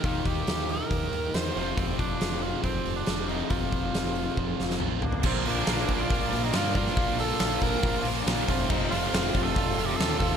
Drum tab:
CC |----------------|----------------|----------------|x---------------|
HH |o-o-o-o-o-o-o-o-|o-o-o-o-o-o-o-o-|o-o-o-o---------|--o-o-o-o-o-o-o-|
SD |----o-------o---|----o-------o---|----o-----oo----|----o-------o--o|
T2 |----------------|----------------|------------o---|----------------|
FT |----------------|----------------|--------------oo|----------------|
BD |o-o-----o-------|o-o-----o-------|o-o-----o-------|o-----o-o-----o-|

CC |----------------|x---------------|
HH |o-o-o-o-o-o-o-o-|--o-o-o-o-o-o-o-|
SD |----o-------o---|----o-------o---|
T2 |----------------|----------------|
FT |----------------|----------------|
BD |o-----o-o-----o-|o-----o-o-----o-|